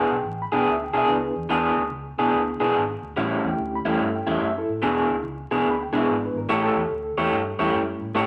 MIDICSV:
0, 0, Header, 1, 4, 480
1, 0, Start_track
1, 0, Tempo, 415800
1, 1737, Time_signature, 4, 2, 24, 8
1, 9541, End_track
2, 0, Start_track
2, 0, Title_t, "Reed electric piano"
2, 0, Program_c, 0, 4
2, 115, Note_on_c, 0, 78, 65
2, 154, Note_off_c, 0, 78, 0
2, 169, Note_on_c, 0, 79, 84
2, 464, Note_off_c, 0, 79, 0
2, 484, Note_on_c, 0, 83, 71
2, 596, Note_on_c, 0, 59, 70
2, 601, Note_on_c, 0, 62, 56
2, 606, Note_on_c, 0, 64, 57
2, 611, Note_on_c, 0, 68, 64
2, 626, Note_off_c, 0, 83, 0
2, 639, Note_on_c, 0, 79, 96
2, 753, Note_off_c, 0, 59, 0
2, 755, Note_off_c, 0, 62, 0
2, 758, Note_off_c, 0, 64, 0
2, 760, Note_off_c, 0, 68, 0
2, 784, Note_off_c, 0, 79, 0
2, 807, Note_on_c, 0, 76, 80
2, 948, Note_off_c, 0, 76, 0
2, 969, Note_on_c, 0, 79, 75
2, 1109, Note_off_c, 0, 79, 0
2, 1127, Note_on_c, 0, 76, 80
2, 1238, Note_on_c, 0, 59, 77
2, 1243, Note_on_c, 0, 62, 65
2, 1249, Note_on_c, 0, 64, 67
2, 1253, Note_on_c, 0, 71, 83
2, 1268, Note_off_c, 0, 76, 0
2, 1281, Note_on_c, 0, 74, 75
2, 1425, Note_off_c, 0, 74, 0
2, 1442, Note_on_c, 0, 68, 73
2, 1531, Note_off_c, 0, 59, 0
2, 1533, Note_off_c, 0, 62, 0
2, 1536, Note_off_c, 0, 64, 0
2, 1538, Note_off_c, 0, 71, 0
2, 2362, Note_off_c, 0, 68, 0
2, 2513, Note_on_c, 0, 59, 64
2, 2518, Note_on_c, 0, 62, 54
2, 2522, Note_on_c, 0, 64, 51
2, 2531, Note_on_c, 0, 68, 64
2, 2972, Note_off_c, 0, 59, 0
2, 2974, Note_off_c, 0, 62, 0
2, 2977, Note_off_c, 0, 64, 0
2, 2981, Note_off_c, 0, 68, 0
2, 2997, Note_on_c, 0, 59, 74
2, 3005, Note_on_c, 0, 62, 64
2, 3010, Note_on_c, 0, 64, 61
2, 3016, Note_on_c, 0, 68, 76
2, 3155, Note_off_c, 0, 59, 0
2, 3159, Note_off_c, 0, 62, 0
2, 3161, Note_off_c, 0, 64, 0
2, 3164, Note_off_c, 0, 68, 0
2, 3958, Note_on_c, 0, 57, 82
2, 3969, Note_on_c, 0, 61, 75
2, 3969, Note_on_c, 0, 78, 66
2, 3971, Note_on_c, 0, 64, 67
2, 3978, Note_on_c, 0, 67, 83
2, 4007, Note_off_c, 0, 78, 0
2, 4018, Note_on_c, 0, 79, 95
2, 4310, Note_off_c, 0, 79, 0
2, 4333, Note_on_c, 0, 83, 81
2, 4415, Note_off_c, 0, 57, 0
2, 4420, Note_off_c, 0, 61, 0
2, 4421, Note_off_c, 0, 64, 0
2, 4425, Note_off_c, 0, 67, 0
2, 4437, Note_on_c, 0, 57, 75
2, 4443, Note_on_c, 0, 61, 63
2, 4450, Note_on_c, 0, 64, 65
2, 4454, Note_on_c, 0, 69, 76
2, 4472, Note_off_c, 0, 83, 0
2, 4495, Note_on_c, 0, 79, 86
2, 4633, Note_off_c, 0, 79, 0
2, 4650, Note_on_c, 0, 76, 74
2, 4791, Note_off_c, 0, 76, 0
2, 4798, Note_on_c, 0, 79, 89
2, 4944, Note_off_c, 0, 79, 0
2, 4974, Note_on_c, 0, 76, 83
2, 5058, Note_off_c, 0, 57, 0
2, 5061, Note_off_c, 0, 61, 0
2, 5065, Note_off_c, 0, 64, 0
2, 5067, Note_off_c, 0, 69, 0
2, 5113, Note_off_c, 0, 76, 0
2, 5136, Note_on_c, 0, 76, 74
2, 5274, Note_off_c, 0, 76, 0
2, 5286, Note_on_c, 0, 64, 89
2, 5291, Note_on_c, 0, 69, 90
2, 5586, Note_off_c, 0, 69, 0
2, 6186, Note_off_c, 0, 64, 0
2, 6574, Note_on_c, 0, 83, 85
2, 6712, Note_off_c, 0, 83, 0
2, 6725, Note_on_c, 0, 79, 76
2, 6830, Note_on_c, 0, 56, 66
2, 6836, Note_on_c, 0, 59, 63
2, 6843, Note_on_c, 0, 62, 59
2, 6850, Note_on_c, 0, 64, 67
2, 6868, Note_off_c, 0, 79, 0
2, 6889, Note_on_c, 0, 76, 72
2, 7030, Note_off_c, 0, 76, 0
2, 7048, Note_on_c, 0, 74, 65
2, 7189, Note_off_c, 0, 74, 0
2, 7218, Note_on_c, 0, 71, 76
2, 7354, Note_off_c, 0, 71, 0
2, 7357, Note_on_c, 0, 70, 75
2, 7454, Note_off_c, 0, 56, 0
2, 7457, Note_off_c, 0, 59, 0
2, 7461, Note_off_c, 0, 62, 0
2, 7464, Note_off_c, 0, 64, 0
2, 7503, Note_off_c, 0, 70, 0
2, 7532, Note_on_c, 0, 69, 91
2, 7635, Note_on_c, 0, 68, 71
2, 7671, Note_off_c, 0, 69, 0
2, 7685, Note_on_c, 0, 69, 98
2, 7689, Note_off_c, 0, 68, 0
2, 8750, Note_on_c, 0, 55, 75
2, 8760, Note_on_c, 0, 57, 62
2, 8762, Note_on_c, 0, 61, 62
2, 8769, Note_on_c, 0, 64, 88
2, 9067, Note_off_c, 0, 69, 0
2, 9372, Note_off_c, 0, 55, 0
2, 9377, Note_off_c, 0, 57, 0
2, 9378, Note_off_c, 0, 61, 0
2, 9381, Note_off_c, 0, 64, 0
2, 9541, End_track
3, 0, Start_track
3, 0, Title_t, "Clean electric guitar"
3, 0, Program_c, 1, 27
3, 0, Note_on_c, 1, 52, 81
3, 0, Note_on_c, 1, 59, 80
3, 0, Note_on_c, 1, 62, 91
3, 0, Note_on_c, 1, 68, 89
3, 178, Note_off_c, 1, 52, 0
3, 180, Note_off_c, 1, 59, 0
3, 183, Note_off_c, 1, 62, 0
3, 184, Note_off_c, 1, 68, 0
3, 601, Note_on_c, 1, 68, 80
3, 609, Note_on_c, 1, 62, 84
3, 612, Note_on_c, 1, 59, 73
3, 615, Note_on_c, 1, 52, 68
3, 866, Note_off_c, 1, 68, 0
3, 870, Note_off_c, 1, 62, 0
3, 872, Note_off_c, 1, 59, 0
3, 873, Note_off_c, 1, 52, 0
3, 1080, Note_on_c, 1, 68, 99
3, 1085, Note_on_c, 1, 62, 85
3, 1088, Note_on_c, 1, 59, 71
3, 1093, Note_on_c, 1, 52, 67
3, 1346, Note_off_c, 1, 68, 0
3, 1349, Note_off_c, 1, 62, 0
3, 1350, Note_off_c, 1, 59, 0
3, 1353, Note_off_c, 1, 52, 0
3, 1726, Note_on_c, 1, 52, 89
3, 1734, Note_on_c, 1, 59, 86
3, 1738, Note_on_c, 1, 62, 90
3, 1744, Note_on_c, 1, 68, 86
3, 2096, Note_off_c, 1, 52, 0
3, 2100, Note_off_c, 1, 59, 0
3, 2102, Note_off_c, 1, 62, 0
3, 2105, Note_off_c, 1, 68, 0
3, 2525, Note_on_c, 1, 68, 83
3, 2528, Note_on_c, 1, 62, 91
3, 2535, Note_on_c, 1, 59, 78
3, 2539, Note_on_c, 1, 52, 67
3, 2789, Note_off_c, 1, 68, 0
3, 2791, Note_off_c, 1, 62, 0
3, 2794, Note_off_c, 1, 59, 0
3, 2796, Note_off_c, 1, 52, 0
3, 3003, Note_on_c, 1, 68, 90
3, 3012, Note_on_c, 1, 59, 80
3, 3012, Note_on_c, 1, 62, 89
3, 3017, Note_on_c, 1, 52, 79
3, 3269, Note_off_c, 1, 68, 0
3, 3273, Note_off_c, 1, 59, 0
3, 3273, Note_off_c, 1, 62, 0
3, 3276, Note_off_c, 1, 52, 0
3, 3653, Note_on_c, 1, 45, 77
3, 3656, Note_on_c, 1, 55, 86
3, 3661, Note_on_c, 1, 61, 94
3, 3667, Note_on_c, 1, 64, 89
3, 4020, Note_off_c, 1, 45, 0
3, 4022, Note_off_c, 1, 55, 0
3, 4024, Note_off_c, 1, 61, 0
3, 4027, Note_off_c, 1, 64, 0
3, 4446, Note_on_c, 1, 64, 90
3, 4451, Note_on_c, 1, 61, 83
3, 4456, Note_on_c, 1, 55, 78
3, 4460, Note_on_c, 1, 45, 74
3, 4710, Note_off_c, 1, 64, 0
3, 4713, Note_off_c, 1, 61, 0
3, 4715, Note_off_c, 1, 55, 0
3, 4717, Note_off_c, 1, 45, 0
3, 4925, Note_on_c, 1, 64, 99
3, 4929, Note_on_c, 1, 61, 86
3, 4936, Note_on_c, 1, 55, 77
3, 4939, Note_on_c, 1, 45, 78
3, 5189, Note_off_c, 1, 64, 0
3, 5192, Note_off_c, 1, 61, 0
3, 5195, Note_off_c, 1, 55, 0
3, 5197, Note_off_c, 1, 45, 0
3, 5565, Note_on_c, 1, 52, 86
3, 5571, Note_on_c, 1, 59, 80
3, 5577, Note_on_c, 1, 62, 86
3, 5580, Note_on_c, 1, 68, 96
3, 5936, Note_off_c, 1, 52, 0
3, 5939, Note_off_c, 1, 59, 0
3, 5942, Note_off_c, 1, 62, 0
3, 5943, Note_off_c, 1, 68, 0
3, 6362, Note_on_c, 1, 68, 89
3, 6368, Note_on_c, 1, 62, 72
3, 6371, Note_on_c, 1, 59, 77
3, 6374, Note_on_c, 1, 52, 75
3, 6628, Note_off_c, 1, 68, 0
3, 6631, Note_off_c, 1, 62, 0
3, 6632, Note_off_c, 1, 59, 0
3, 6634, Note_off_c, 1, 52, 0
3, 6841, Note_on_c, 1, 68, 86
3, 6847, Note_on_c, 1, 62, 83
3, 6854, Note_on_c, 1, 59, 85
3, 6857, Note_on_c, 1, 52, 72
3, 7107, Note_off_c, 1, 68, 0
3, 7110, Note_off_c, 1, 62, 0
3, 7114, Note_off_c, 1, 59, 0
3, 7115, Note_off_c, 1, 52, 0
3, 7493, Note_on_c, 1, 57, 89
3, 7496, Note_on_c, 1, 64, 88
3, 7503, Note_on_c, 1, 67, 87
3, 7504, Note_on_c, 1, 73, 77
3, 7859, Note_off_c, 1, 57, 0
3, 7861, Note_off_c, 1, 64, 0
3, 7864, Note_off_c, 1, 67, 0
3, 7865, Note_off_c, 1, 73, 0
3, 8284, Note_on_c, 1, 73, 89
3, 8289, Note_on_c, 1, 67, 85
3, 8294, Note_on_c, 1, 64, 79
3, 8297, Note_on_c, 1, 57, 66
3, 8548, Note_off_c, 1, 73, 0
3, 8550, Note_off_c, 1, 67, 0
3, 8553, Note_off_c, 1, 64, 0
3, 8554, Note_off_c, 1, 57, 0
3, 8762, Note_on_c, 1, 73, 97
3, 8766, Note_on_c, 1, 67, 85
3, 8772, Note_on_c, 1, 64, 73
3, 8773, Note_on_c, 1, 57, 74
3, 9026, Note_off_c, 1, 73, 0
3, 9028, Note_off_c, 1, 67, 0
3, 9031, Note_off_c, 1, 64, 0
3, 9032, Note_off_c, 1, 57, 0
3, 9405, Note_on_c, 1, 57, 86
3, 9412, Note_on_c, 1, 64, 93
3, 9416, Note_on_c, 1, 67, 90
3, 9420, Note_on_c, 1, 73, 98
3, 9541, Note_off_c, 1, 57, 0
3, 9541, Note_off_c, 1, 64, 0
3, 9541, Note_off_c, 1, 67, 0
3, 9541, Note_off_c, 1, 73, 0
3, 9541, End_track
4, 0, Start_track
4, 0, Title_t, "Fingered electric bass"
4, 0, Program_c, 2, 33
4, 132, Note_on_c, 2, 35, 89
4, 255, Note_off_c, 2, 35, 0
4, 291, Note_on_c, 2, 33, 75
4, 527, Note_off_c, 2, 33, 0
4, 610, Note_on_c, 2, 35, 79
4, 734, Note_off_c, 2, 35, 0
4, 778, Note_on_c, 2, 38, 102
4, 1012, Note_off_c, 2, 38, 0
4, 1089, Note_on_c, 2, 35, 88
4, 1214, Note_off_c, 2, 35, 0
4, 1251, Note_on_c, 2, 37, 84
4, 1487, Note_off_c, 2, 37, 0
4, 1569, Note_on_c, 2, 40, 76
4, 1694, Note_off_c, 2, 40, 0
4, 1731, Note_on_c, 2, 40, 90
4, 1968, Note_off_c, 2, 40, 0
4, 2039, Note_on_c, 2, 38, 84
4, 2168, Note_off_c, 2, 38, 0
4, 2208, Note_on_c, 2, 37, 76
4, 2446, Note_off_c, 2, 37, 0
4, 2525, Note_on_c, 2, 35, 76
4, 2651, Note_off_c, 2, 35, 0
4, 2687, Note_on_c, 2, 38, 89
4, 2925, Note_off_c, 2, 38, 0
4, 3008, Note_on_c, 2, 35, 83
4, 3134, Note_off_c, 2, 35, 0
4, 3177, Note_on_c, 2, 32, 84
4, 3412, Note_off_c, 2, 32, 0
4, 3490, Note_on_c, 2, 38, 72
4, 3615, Note_off_c, 2, 38, 0
4, 3654, Note_on_c, 2, 33, 84
4, 3890, Note_off_c, 2, 33, 0
4, 3972, Note_on_c, 2, 40, 87
4, 4096, Note_off_c, 2, 40, 0
4, 4136, Note_on_c, 2, 38, 88
4, 4371, Note_off_c, 2, 38, 0
4, 4446, Note_on_c, 2, 40, 82
4, 4573, Note_off_c, 2, 40, 0
4, 4616, Note_on_c, 2, 43, 99
4, 4851, Note_off_c, 2, 43, 0
4, 4930, Note_on_c, 2, 40, 90
4, 5055, Note_off_c, 2, 40, 0
4, 5099, Note_on_c, 2, 42, 91
4, 5333, Note_off_c, 2, 42, 0
4, 5412, Note_on_c, 2, 45, 82
4, 5536, Note_off_c, 2, 45, 0
4, 5573, Note_on_c, 2, 28, 81
4, 5809, Note_off_c, 2, 28, 0
4, 5884, Note_on_c, 2, 38, 96
4, 6011, Note_off_c, 2, 38, 0
4, 6045, Note_on_c, 2, 37, 87
4, 6284, Note_off_c, 2, 37, 0
4, 6366, Note_on_c, 2, 35, 69
4, 6492, Note_off_c, 2, 35, 0
4, 6530, Note_on_c, 2, 38, 93
4, 6767, Note_off_c, 2, 38, 0
4, 6842, Note_on_c, 2, 35, 84
4, 6970, Note_off_c, 2, 35, 0
4, 7010, Note_on_c, 2, 32, 86
4, 7247, Note_off_c, 2, 32, 0
4, 7320, Note_on_c, 2, 32, 70
4, 7448, Note_off_c, 2, 32, 0
4, 7482, Note_on_c, 2, 33, 84
4, 7722, Note_off_c, 2, 33, 0
4, 7799, Note_on_c, 2, 40, 91
4, 7928, Note_off_c, 2, 40, 0
4, 7963, Note_on_c, 2, 38, 80
4, 8202, Note_off_c, 2, 38, 0
4, 8281, Note_on_c, 2, 40, 77
4, 8408, Note_off_c, 2, 40, 0
4, 8453, Note_on_c, 2, 43, 103
4, 8688, Note_off_c, 2, 43, 0
4, 8764, Note_on_c, 2, 40, 92
4, 8890, Note_off_c, 2, 40, 0
4, 8936, Note_on_c, 2, 42, 91
4, 9169, Note_off_c, 2, 42, 0
4, 9247, Note_on_c, 2, 45, 79
4, 9371, Note_off_c, 2, 45, 0
4, 9411, Note_on_c, 2, 45, 86
4, 9541, Note_off_c, 2, 45, 0
4, 9541, End_track
0, 0, End_of_file